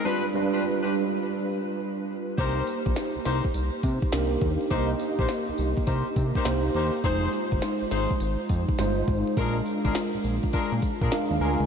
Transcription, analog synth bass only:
X:1
M:4/4
L:1/16
Q:"Swing 16ths" 1/4=103
K:Cm
V:1 name="Analog synth bass" clef=bass
z16 | C,,2 z B,,, z C,, C,, z C,, z C, z C,,2 E,, z | C,,2 z B,,, z C,, C,, z C,, z C, z C,,2 E,, z | F,,,2 z G,,, z A,,, A,,, z A,,, z F,, z G,,,2 A,,, z |
B,,,2 z A,,, z B,,, B,,, z2 B,, z B,, z E,, D,, _D,, |]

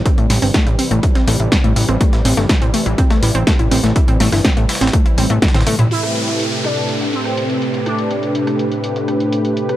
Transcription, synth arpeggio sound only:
X:1
M:4/4
L:1/16
Q:1/4=123
K:Am
V:1 name="Synth arpeggio sound"
C A, E C A, E C A, E C A, E C A, E C | A, E C A, E C A, E C A, E C A, E C A, | E C A, E C A, E C A, E C A, E C A, E | z16 |
z16 |]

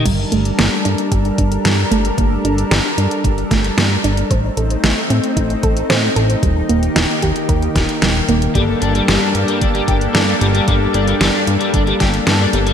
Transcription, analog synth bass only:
X:1
M:4/4
L:1/8
Q:1/4=113
K:Gm
V:1 name="Analog synth bass" clef=bass
G,,, G,,, G,,, G,, G,,, G,,, G,, G,,, | G,,, G,,, G,,, G,, G,,, G,,, G,, G,,, | A,,, A,,, A,,, A,, A,,, A,,, A,, A,,, | E,,, E,,, E,,, E,, E,, E,,, E,,, E,,, |
G,,, G,,, G,,, G,, G,,, G,,, G,, G,,, | G,,, G,,, G,,, G,, G,,, G,,, G,, G,,, |]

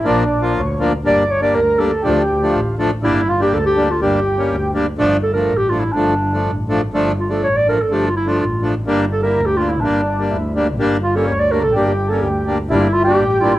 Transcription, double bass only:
X:1
M:2/4
L:1/8
Q:1/4=124
K:none
V:1 name="Double bass" clef=bass
_B,,,2 D,,2 | G,,,2 D,,2 | D,,2 A,,,2 | G,,,2 D,,2 |
G,,,2 D,,2 | G,,,2 A,,,2 | G,,,2 A,,,2 | G,,,2 A,,,2 |
G,,,2 A,,,2 | G,,,2 D,,2 | G,,,2 D,,2 | G,,,2 D,,2 |
G,,,2 D,,2 | G,,,2 A,,,2 |]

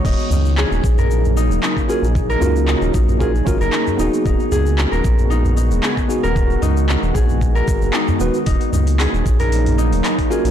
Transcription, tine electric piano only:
X:1
M:4/4
L:1/8
Q:"Swing 16ths" 1/4=114
K:Ebm
V:1 name="Tine electric piano"
z6 z [DFGB] | z [DFGB]3 [DFGB] [DFGB] z [CEGA]- | [CEGA]6- [CEGA] [CEGA] | z6 z [CEGc] |
z6 z [DFGB] |]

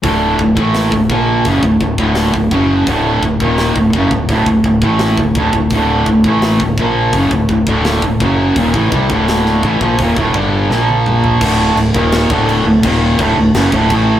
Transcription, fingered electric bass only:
X:1
M:4/4
L:1/16
Q:1/4=84
K:none
V:1 name="Fingered electric bass" clef=bass
D,,,2 D,,, A,,,2 D,,, _B,,,2 ^F,,, D,,, D,,, D,,,2 D,,, F,,,2 | D,,,2 D,,, _E,,,2 D,,, ^F,,, D,,, D,,, D,,, D,,, A,,,2 D,,, D,,, D,,, | D,,,2 D,,, A,,,2 D,,, _B,,,2 ^F,,, D,,, D,,, D,,,2 D,,, F,,,2 | _E,,, A,,, C,, D,,,3 A,,, _B,,, E,,, D,,, G,,,2 B,,,4 |
D,,,2 D,,, _E,,,2 D,,,2 D,,, E,,,2 D,,, D,,, ^F,,, D,,, A,,,2 |]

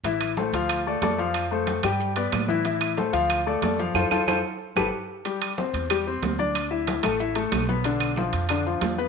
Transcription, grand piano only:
X:1
M:4/4
L:1/8
Q:1/4=185
K:Ddor
V:1 name="Grand piano"
[E,Ee]2 [A,Ac] [F,Ff]2 [A,Ad] [A,Ad] [F,Ff]- | [F,Ff] [A,Ac]2 [G,Gg]2 [B,Bd]2 [E,Ee] | [E,Ee]2 [A,Ac] [F,Ff]2 [A,Ad] [A,Ad] [F,Ff] | [FAc] [FAc] [FAc] z2 [GAB] z2 |
[G,G]2 [Cc]2 [G,G] [Cc]2 [Dd]- | [Dd] [Ee]2 [A,A] [Ee] [A,A]2 [B,B] | [D,D]2 [F,F]2 [D,D] [F,F]2 [B,B] |]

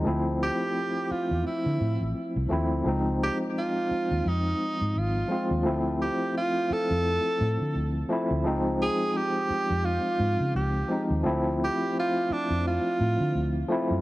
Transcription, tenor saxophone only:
X:1
M:4/4
L:1/16
Q:"Swing 16ths" 1/4=86
K:Dm
V:1 name="Tenor saxophone"
z2 G4 F2 E4 z4 | z2 G2 F4 _E4 F3 z | z2 G2 F2 A8 z2 | z2 _A2 G4 F4 G3 z |
z2 G2 F2 D2 F6 z2 |]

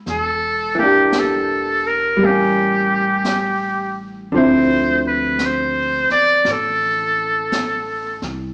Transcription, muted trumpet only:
X:1
M:4/4
L:1/8
Q:"Swing" 1/4=56
K:Dlyd
V:1 name="Muted trumpet"
A =G A _B G3 z | =c B c d A3 z |]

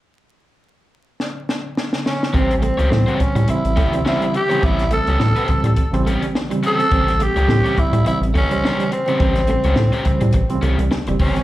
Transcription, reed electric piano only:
X:1
M:4/4
L:1/16
Q:"Swing 16ths" 1/4=105
K:Amix
V:1 name="Reed electric piano" clef=bass
z16 | [C,E,G,^B,]3 z [C,E,G,=B,^B,]3 z [C,E,G,B,]2 z [^B,,C,E,G,B,]3 z [C,E,G,B,]- | [C,E,G,^B,] z [C,E,G,B,]3 z [C,E,G,B,]2 z [C,E,G,B,]3 z [C,E,G,B,]2 z | [^B,,C,E,G,^B,]3 z [C,E,G,B,]3 z [C,E,G,B,]2 z [C,E,G,^B]3 z [C,E,G,B,]- |
[C,E,G,^B,] z [C,E,G,B,]3 z [C,E,G,B,]2 z [^B,,C,E,G,B,]3 z [C,E,G,B,]2 z |]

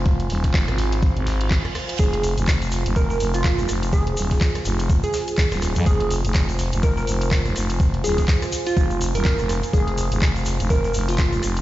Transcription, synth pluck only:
X:1
M:4/4
L:1/16
Q:"Swing 16ths" 1/4=124
K:Fm
V:1 name="Synth pluck"
z16 | A A z6 B B z F2 z3 | A6 z3 A4 z3 | A A z6 B B z6 |
z2 A2 z3 F F z2 B3 z2 | A A z6 B B z F2 z3 |]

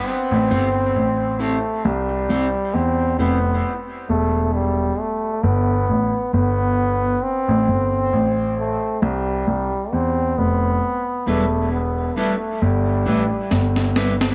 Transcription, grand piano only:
X:1
M:4/4
L:1/16
Q:"Swing 16ths" 1/4=67
K:Am
V:1 name="Grand piano" clef=bass
z A,,, G,,,2 A,,,3 z C,,2 C,, z E,,2 F,,,2 | z2 E,,,4 z2 G,,,2 A,,, z G,,,4 | z A,,, G,,,2 A,,,3 z C,,2 C,, z E,,2 F,,,2 | z2 E,,,4 z2 G,,,2 A,,, z G,,,4 |]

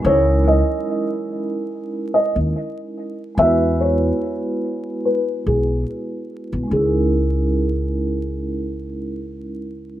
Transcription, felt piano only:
X:1
M:4/4
L:1/16
Q:"Swing 16ths" 1/4=72
K:C#dor
V:1 name="Felt piano"
c2 d3 z4 z d z4 z | e2 c3 z3 B2 G2 z4 | G12 z4 |]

